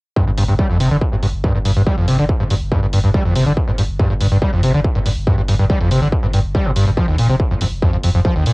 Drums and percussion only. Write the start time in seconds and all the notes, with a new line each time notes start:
0.16 kick
0.38 open hi-hat
0.59 kick
0.80 open hi-hat
1.01 kick
1.23 open hi-hat
1.44 kick
1.65 open hi-hat
1.87 kick
2.08 open hi-hat
2.29 kick
2.50 open hi-hat
2.72 kick
2.93 open hi-hat
3.14 kick
3.35 open hi-hat
3.57 kick
3.78 open hi-hat
3.99 kick
4.21 open hi-hat
4.42 kick
4.63 open hi-hat
4.85 kick
5.06 open hi-hat
5.27 kick
5.48 open hi-hat
5.70 kick
5.91 open hi-hat
6.12 kick
6.33 open hi-hat
6.55 kick
6.76 open hi-hat
6.97 kick
7.18 open hi-hat
7.40 kick
7.61 open hi-hat
7.82 kick
8.04 open hi-hat
8.25 kick
8.46 open hi-hat